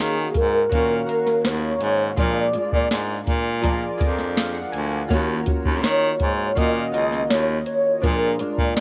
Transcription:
0.00 0.28 D#3 medium
0.00 0.72 A#3 soft
0.00 0.72 C#4 soft
0.00 0.13 F#4 medium
0.00 0.71 F#4 medium
0.00 0.37 G#4 medium
0.00 0.13 A#4 medium
0.00 0.14 C#5 medium
0.00 0.14 F5 medium
0.34 0.64 G#2 medium
0.34 0.71 A#4 medium
0.34 kick medium
0.34 closed hi-hat medium
0.69 1.01 A#2 medium
0.69 2.17 D#3 medium
0.69 2.18 A#3 medium
0.69 0.93 F#4 medium
0.69 0.93 A#4 medium
0.69 1.47 A#4 loud
0.69 0.93 C#5 medium
0.69 0.94 F5 medium
0.69 kick medium
0.69 closed hi-hat medium
0.74 2.18 C#4 medium
0.74 2.18 F#4 medium
1.06 1.73 F#4 medium
1.06 1.74 A#4 medium
1.06 1.74 C#5 medium
1.06 1.75 F5 medium
1.06 closed hi-hat medium
1.27 snare soft
1.44 1.74 D#2 medium
1.44 2.20 C#5 loud
1.44 snare loud
1.44 closed hi-hat medium
1.81 2.10 G#2 medium
1.81 closed hi-hat medium
2.16 2.54 A#2 medium
2.16 2.47 A#2 medium
2.16 2.55 F3 medium
2.16 2.54 G#3 medium
2.16 2.53 D4 medium
2.16 3.05 F4 medium
2.16 2.52 F4 medium
2.16 3.06 G#4 medium
2.16 3.06 A#4 medium
2.16 3.06 D5 medium
2.16 3.65 D5 loud
2.16 kick medium
2.16 closed hi-hat medium
2.53 3.63 G#3 soft
2.53 3.64 D4 soft
2.53 3.64 F4 medium
2.53 closed hi-hat medium
2.73 2.87 A#2 medium
2.73 kick medium
2.91 3.20 G#2 medium
2.91 snare loud
2.91 closed hi-hat medium
3.27 3.86 A#2 medium
3.27 kick medium
3.27 closed hi-hat medium
3.62 5.09 F3 medium
3.62 5.10 G#3 medium
3.62 5.10 D4 medium
3.62 3.85 F4 medium
3.62 3.85 G#4 medium
3.62 3.86 A#4 medium
3.62 3.86 D5 medium
3.62 kick medium
3.62 closed hi-hat medium
3.67 5.11 F4 medium
3.98 4.59 F2 medium
3.98 4.65 F4 medium
3.98 4.66 G#4 medium
3.98 4.66 A#4 medium
3.98 4.67 D5 medium
3.98 kick loud
3.98 closed hi-hat medium
4.19 snare soft
4.37 4.54 F5 medium
4.37 snare loud
4.37 closed hi-hat medium
4.54 4.72 F#5 medium
4.72 5.03 D2 medium
4.72 5.07 G#5 medium
4.72 closed hi-hat medium
5.08 5.40 D#2 loud
5.08 5.47 D#3 medium
5.08 5.46 A#3 medium
5.08 5.45 C#4 medium
5.08 5.97 F4 medium
5.08 5.98 F#4 medium
5.08 5.45 F#4 loud
5.08 5.98 A#4 medium
5.08 5.99 C#5 medium
5.08 kick medium
5.08 closed hi-hat medium
5.46 6.56 A#3 soft
5.46 6.57 C#4 soft
5.46 6.56 F#4 medium
5.46 kick medium
5.46 closed hi-hat medium
5.65 5.84 D#2 medium
5.65 kick medium
5.83 6.12 D#3 loud
5.83 6.18 C#5 loud
5.83 snare loud
5.83 closed hi-hat medium
6.20 6.50 G#2 medium
6.20 6.58 C#5 loud
6.20 kick medium
6.20 closed hi-hat medium
6.55 6.86 A#2 medium
6.55 8.02 D#3 medium
6.55 8.04 A#3 medium
6.55 8.04 C#4 medium
6.55 6.78 F4 medium
6.55 6.79 F#4 medium
6.55 6.79 A#4 medium
6.55 7.31 D#5 loud
6.55 6.79 D#5 medium
6.55 kick medium
6.55 closed hi-hat medium
6.59 8.04 F#4 medium
6.92 7.22 C#2 medium
6.92 7.59 F4 medium
6.92 7.59 F#4 medium
6.92 7.60 A#4 medium
6.92 7.60 D#5 medium
6.92 closed hi-hat medium
7.12 snare soft
7.29 7.59 D#2 medium
7.29 7.66 C#5 loud
7.29 snare loud
7.29 closed hi-hat medium
7.66 8.04 C#5 loud
7.66 closed hi-hat medium
8.02 8.40 A#2 medium
8.02 8.33 A#2 medium
8.02 8.40 F3 medium
8.02 8.40 G#3 medium
8.02 8.80 D4 medium
8.02 8.39 D4 medium
8.02 8.80 F4 medium
8.02 8.38 F4 medium
8.02 8.80 G#4 medium
8.02 8.40 A#4 loud
8.02 8.80 A#4 medium
8.02 kick medium
8.02 closed hi-hat medium
8.39 8.80 G#3 soft
8.39 8.80 D4 medium
8.39 8.80 F4 soft
8.39 8.80 D5 loud
8.39 closed hi-hat medium
8.58 8.73 A#2 medium
8.58 kick medium
8.76 8.80 G#2 medium
8.76 snare loud
8.76 closed hi-hat medium

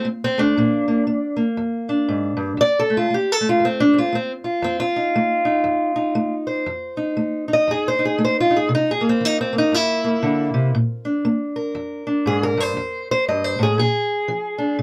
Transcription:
0.05 0.36 A3 medium
0.24 0.40 C4 medium
0.38 0.55 A3 soft
0.38 1.41 D4 medium
0.57 1.04 A#2 medium
0.57 0.87 A#3 soft
0.88 1.06 A#3 soft
1.07 1.35 A#3 medium
1.37 2.57 A#3 soft
1.57 2.05 F2 medium
1.89 2.58 D4 soft
2.08 2.36 G#2 medium
2.37 2.57 G2 medium
2.57 3.06 F2 medium
2.57 2.78 D5 loud
2.79 2.96 A4 loud
2.90 3.10 A3 soft
2.97 3.13 F4 medium
3.10 3.40 A3 medium
3.10 3.32 G4 medium
3.32 3.47 A4 medium
3.41 4.12 A3 soft
3.49 3.64 F4 medium
3.59 4.08 F2 medium
3.65 3.81 C4 medium
3.80 3.97 D4 medium
3.93 4.15 C4 soft
3.98 4.15 F4 medium
4.13 4.60 A3 medium
4.13 4.31 C4 medium
4.44 4.79 F4 soft
4.62 5.10 F2 medium
4.62 4.81 C4 medium
4.80 6.33 F4 loud
4.96 5.45 D#4 soft
5.16 5.62 A3 medium
5.45 5.95 D#4 soft
5.64 6.12 F2 medium
5.96 6.65 D#4 soft
6.15 6.63 A3 medium
6.47 7.53 C5 soft
6.66 7.14 F2 medium
6.97 7.47 D#4 soft
7.17 7.64 A3 medium
7.48 7.98 D#4 soft
7.53 7.70 D#5 medium
7.67 8.15 F2 medium
7.67 7.87 G#4 medium
7.88 8.04 C5 medium
7.99 8.49 D#4 soft
8.05 8.21 G#4 medium
8.18 8.66 A3 medium
8.24 8.39 C5 medium
8.40 8.56 F4 medium
8.50 8.68 D#4 soft
8.56 8.72 G#4 medium
8.69 9.17 C3 medium
8.75 8.90 D#4 loud
8.91 9.06 G#4 medium
9.01 9.52 A#3 soft
9.09 9.25 C4 medium
9.21 9.68 E3 medium
9.25 9.40 D#4 medium
9.41 9.57 C4 medium
9.53 10.03 A#3 soft
9.58 9.74 D#4 medium
9.72 10.19 G2 medium
9.72 10.75 E4 loud
10.04 10.72 A#3 soft
10.23 10.53 D3 medium
10.54 10.74 C3 medium
10.75 11.21 A#2 medium
11.05 12.06 D4 soft
11.25 11.71 A#3 medium
11.56 12.42 A#4 soft
11.75 12.21 F2 medium
12.07 12.74 D4 soft
12.26 12.56 G#2 medium
12.26 12.43 G#4 loud
12.43 12.60 A#4 medium
12.57 12.76 G2 medium
12.57 13.10 C5 loud
12.77 13.23 F2 medium
13.11 13.27 C5 medium
13.28 13.58 G2 medium
13.28 13.44 D#5 medium
13.44 13.61 C5 medium
13.59 13.78 A2 medium
13.59 13.78 G#4 medium
13.78 14.24 A#2 medium
13.78 14.80 G#4 loud
14.28 14.75 F3 medium
14.58 14.76 D4 soft
14.79 14.82 C3 medium

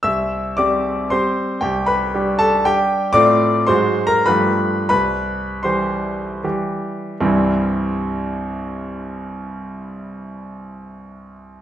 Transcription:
0.03 0.56 C2 soft
0.03 0.54 E5 medium
0.03 0.58 E6 medium
0.57 1.08 G3 soft
0.57 1.08 C4 soft
0.57 1.08 G4 soft
0.57 1.08 D5 medium
0.57 1.11 D6 medium
1.10 1.59 G3 soft
1.10 1.59 C4 soft
1.10 1.59 G4 soft
1.10 1.59 C5 medium
1.10 1.62 C6 medium
1.61 2.13 C2 medium
1.61 1.86 G4 medium
1.61 1.87 G5 medium
1.86 2.37 B4 medium
1.86 2.40 B5 medium
2.14 2.62 G3 soft
2.14 2.62 D4 soft
2.14 2.63 G4 soft
2.39 2.64 A4 medium
2.39 2.65 A5 medium
2.65 3.10 G3 soft
2.65 3.11 D4 soft
2.65 3.11 G4 medium
2.65 3.14 G5 medium
3.13 3.66 A2 medium
3.13 3.64 A3 soft
3.13 3.64 C4 soft
3.13 3.65 F4 soft
3.13 3.64 D5 medium
3.13 3.67 D6 loud
3.67 4.25 G#2 medium
3.67 4.23 F#3 soft
3.67 4.24 G#3 soft
3.67 4.24 F#4 soft
3.67 4.04 C5 medium
3.67 4.06 C6 medium
4.07 4.26 A#4 medium
4.07 4.27 A#5 medium
4.26 4.89 G2 medium
4.26 4.86 F3 soft
4.26 4.87 A3 soft
4.26 4.87 G4 soft
4.26 4.86 B4 medium
4.26 4.88 B5 medium
4.89 5.63 C2 medium
4.89 5.61 B4 medium
4.89 5.64 B5 medium
5.63 6.39 E3 soft
5.63 6.39 G3 soft
5.63 6.40 G4 soft
5.63 6.39 C5 soft
5.63 6.42 C6 medium
6.44 7.17 E3 soft
6.44 7.17 G3 soft
6.44 7.17 G4 soft
7.21 11.62 C2 medium
7.21 11.62 G2 soft
7.21 11.62 E3 medium
7.21 11.62 G3 soft
7.21 11.62 C4 soft
7.21 11.62 E4 soft

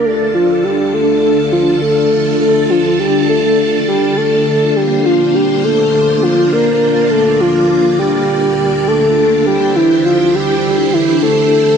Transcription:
0.05 4.72 D3 medium
0.05 11.77 D4 medium
0.05 4.72 F4 medium
0.05 0.34 A4 loud
0.05 4.72 A4 medium
0.05 4.72 A5 medium
0.35 0.66 F4 medium
0.64 0.95 G4 medium
0.94 1.52 A4 loud
1.52 1.80 F4 medium
1.82 2.36 A4 loud
2.41 2.72 A4 loud
2.70 2.99 F4 medium
3.00 3.27 G4 medium
3.29 3.84 A4 loud
3.88 4.19 G4 medium
4.17 4.78 A4 loud
4.76 11.77 D3 medium
4.76 9.42 A#3 medium
4.76 9.42 F4 medium
4.76 5.07 G4 loud
4.76 7.09 C5 medium
5.06 5.36 F4 medium
5.35 5.66 G4 loud
5.64 6.24 A4 loud
6.23 6.54 F4 loud
6.52 7.10 A#4 loud
7.11 7.42 A4 loud
7.11 9.44 D5 medium
7.41 7.99 F4 loud
7.99 8.89 G4 loud
8.88 9.46 A4 loud
9.46 11.77 E4 medium
9.46 9.77 G4 loud
9.46 11.77 G4 medium
9.46 11.77 C5 medium
9.76 10.05 E4 medium
10.05 10.36 F4 loud
10.35 10.95 G4 loud
10.93 11.22 E4 loud
11.23 11.77 A4 loud

